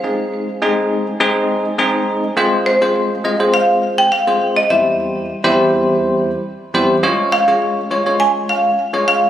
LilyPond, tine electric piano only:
\new Staff \with { instrumentName = "Tine electric piano" } { \time 4/4 \key f \minor \tempo 4 = 103 <aes c' ees' aes'>8. r16 <aes c' ees' aes'>8. r16 <aes c' ees' aes'>8. r16 <aes c' ees' aes'>8. r16 | <aes c' f' aes' c''>8 r16 <aes c' f' aes' c''>8 r16 <aes c' f' aes' ees''>16 <aes c' f' aes' c''>4 r8 <aes c' f' aes' c''>8 r16 | <e, g c' e' g' c''>4 r16 <e, g c' e' g' c''>4. r8. <e, g c' e' g' c''>16 r16 | <aes des' f' aes' des''>8 r16 <aes des' f' aes' des''>8 r16 <aes des' f' aes' des''>16 <aes des' f' aes' des''>4 r8 <aes des' f' aes' des''>8 r16 | }